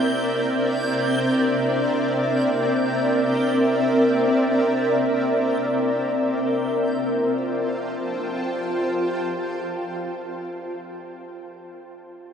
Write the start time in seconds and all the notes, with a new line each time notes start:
Already playing: C4 A#4 D5 E5 G6
6.52 F4
6.65 C5
6.76 G5
6.89 A5